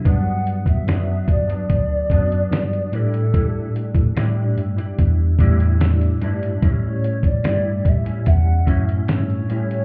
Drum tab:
HH |x-xxx-xxx-xxxxxx|x-xxx-xxx-xxxxxx|x-xxx-xxx-xxxxxx|
SD |----o-------o---|----o-------o---|----o-------o---|
BD |o--o--o-o-o-----|o--o----o-o-----|o--o--o-o-o-----|